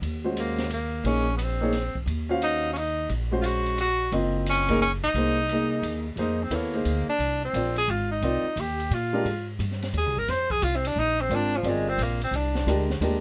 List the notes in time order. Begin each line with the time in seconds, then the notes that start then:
0.02 D#2, ride
0.24 G#3 C#4 F#4 C5
0.37 A#3, hi-hat pedal, ride
0.58 snare, ride
0.70 A#3, ride
1.04 A#1 A#3 C#4 D#4 G#4 C#5, ride
1.37 B3, hi-hat pedal, ride
1.42 C4
1.61 A#3 D#4 G#4 C#5
1.73 snare, ride
1.95 muted upright bass stroke, kick
2.06 D#2, ride
2.29 C#4 F#4 C5 F5
2.42 D#4, hi-hat pedal, ride
2.73 C#4, ride
2.78 D#4
3.09 A#1, ride
3.31 G#3 C#4 F#4 C5
3.42 F4, hi-hat pedal, ride
3.46 F#4
3.66 ride
3.78 F#4, hi-hat pedal, ride
4.12 F#1 C4 F4 A#4 D#5, ride
4.46 C#4, hi-hat pedal, ride
4.69 A#3 D#4 G#4 A#4, kick, ride
4.82 C#4
5.03 A#1 D#4
5.14 C2 A#3 D#4 G#4 C5, ride
5.49 A#3 D#4 G#4, hi-hat pedal, ride
5.54 D#5
5.82 D#2, ride
6.16 F2 A#3 D#4 G#4 C5, ride
6.43 C4
6.50 D#2 B3 E4 A4 C#5, hi-hat pedal, ride
6.55 A#3
6.73 A#3 D#4 G#4 C5, ride
6.85 D2, ride
7.08 D4, muted upright bass stroke
7.19 C2, ride
7.45 C4
7.53 A#1 C4 F4 A#4 D5, hi-hat pedal, ride
7.76 G#4, ride
7.88 G#1 F4, ride
8.11 D#4
8.22 C2 C4 F4 A#4 D5, ride
8.44 muted upright bass stroke
8.56 D#2 G4, hi-hat pedal, ride
8.80 ride
8.91 A#2 F4, ride
9.13 G#3 D4 G4 A#4
9.25 G#2, ride
9.59 G2, hi-hat pedal, ride
9.72 snare
9.82 snare, ride
9.93 D#2, ride
9.98 G#4
10.06 C2
10.17 G#1 A#4
10.28 F2 C5, snare, ride
10.50 G#4, kick
10.62 C2 F4, hi-hat pedal, ride
10.76 C4
10.85 D4, ride
10.96 A#1 D#4
11.21 C4
11.29 G#1 C4 F4 A#4 D5, ride
11.35 D4
11.57 F3
11.63 G1 C4 F4 A#4 D5, ride
11.69 G#3
11.89 C4
11.98 A#1, hi-hat pedal, ride
12.03 A#3
12.21 C4, ride
12.31 C2, ride
12.36 D4
12.55 snare
12.66 D2 G#3 D4 G4 A#4, hi-hat pedal, ride
12.90 snare
13.00 D#2 G#3 D4 G4 A#4, ride